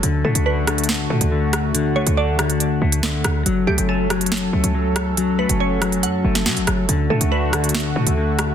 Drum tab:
HH |x-----x-----x-xxxx----x-----x---|x-----x-----x-x-x-----x-x---x---|x-----x-----x-xxxx----x-----x---|x-----x-----x-x-x-----x-x-x-x---|
SD |------------r---o-----------r---|------------r-----------o---r---|------------r---o-----------r---|------------r---------o-o---r---|

HH |x-----x-----x-xxxx----x-----x---|
SD |------------r---o-----------r---|